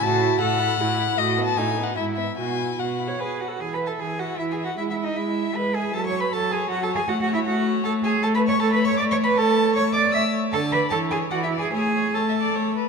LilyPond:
<<
  \new Staff \with { instrumentName = "Violin" } { \time 3/4 \key e \major \tempo 4 = 155 fis'8 e'8 fis'8 e'8 fis'8 e'8 | a8 b8 a8 b8 e'8 b8 | fis'8 e'8 fis'8 e'8 gis''8 fis''8 | \tuplet 3/2 { gis''8 b''8 a''8 } gis''8 fis''8 \tuplet 3/2 { e''8 gis''8 fis''8 } |
\tuplet 3/2 { e''8 e''8 dis''8 } e''4 b''8 gis''8 | \tuplet 3/2 { a''8 cis'''8 b''8 } a''8 gis''8 \tuplet 3/2 { fis''8 a''8 gis''8 } | \tuplet 3/2 { fis''8 fis''8 e''8 } fis''4 a''8 gis''8 | \key a \major \tuplet 3/2 { a''8 b''8 cis'''8 a''8 b''8 cis'''8 d'''8 cis'''8 b''8 } |
a''4 cis'''8 d'''8 e'''8 r8 | a''8 b''8 a''8 gis''8 \tuplet 3/2 { fis''8 e''8 gis''8 } | gis''4 a''4. r8 | }
  \new Staff \with { instrumentName = "Violin" } { \time 3/4 \key e \major a''4 fis''2 | \tuplet 3/2 { dis''4 a''8 gis''4 fis''8 } e''8 e''8 | gis''4 fis''4. r8 | r8 e''4 e''4 e''8 |
e''8 e''4 e''4 e''8 | r8 cis''4 cis''4 cis''8 | cis''8 cis''4 cis''4 cis''8 | \key a \major r8 cis''4 cis''4 cis''8 |
cis''8 cis''4 cis''4 cis''8 | r8 d''8 cis''8 cis''8 d''8 d''8 | cis''8 cis''8 \tuplet 3/2 { cis''8 e''8 d''8 } cis''8 b'8 | }
  \new Staff \with { instrumentName = "Cello" } { \time 3/4 \key e \major a,4 a,4 a,4 | a,4 a,4 gis,4 | b,4 b,4 gis'8 fis'8 | \tuplet 3/2 { gis'8 b'8 a'8 } gis'8 fis'8 \tuplet 3/2 { e'8 gis'8 fis'8 } |
\tuplet 3/2 { e'8 e'8 dis'8 } e'4 b'8 gis'8 | \tuplet 3/2 { a'8 cis''8 b'8 } a'8 gis'8 \tuplet 3/2 { fis'8 a'8 gis'8 } | \tuplet 3/2 { fis'8 fis'8 e'8 } fis'4 a'8 gis'8 | \key a \major \tuplet 3/2 { a'8 b'8 cis''8 a'8 b'8 cis''8 d''8 cis''8 b'8 } |
a'4 cis''8 d''8 e''8 r8 | a'8 b'8 a'8 gis'8 \tuplet 3/2 { fis'8 e'8 gis'8 } | gis'4 a'4. r8 | }
  \new Staff \with { instrumentName = "Viola" } { \time 3/4 \key e \major fis'4 a'4 e'4 | fis'4 dis'4 e'4 | fis'4 \tuplet 3/2 { fis'4 cis''8 b'4 a'8 } | e4 e4 e4 |
gis4 gis4 gis4 | fis4 fis4 fis4 | a4 a4 a4 | \key a \major a4 a4 a4 |
a4 a4 a4 | d4 e4 e4 | a4 a4 a4 | }
>>